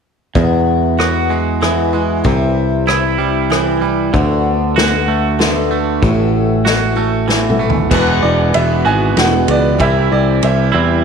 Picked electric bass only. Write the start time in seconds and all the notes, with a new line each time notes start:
0.35 E2
2.25 C2
4.14 D2
6.02 A1
7.91 E1
8.23 E1
8.55 E1
8.86 G#1
9.17 E1
9.48 C#2
9.80 C2
10.12 C2
10.43 C2
10.74 E2